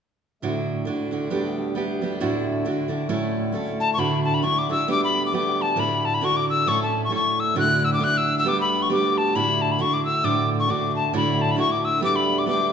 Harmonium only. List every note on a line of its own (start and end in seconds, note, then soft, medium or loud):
0.43 3.96 D2 medium
0.43 3.96 A2 soft
3.97 7.55 D2 soft
3.97 7.55 A2 soft
7.57 11.12 D2 medium
7.57 11.13 A2 soft
11.13 12.73 D2 medium
11.13 12.73 A2 medium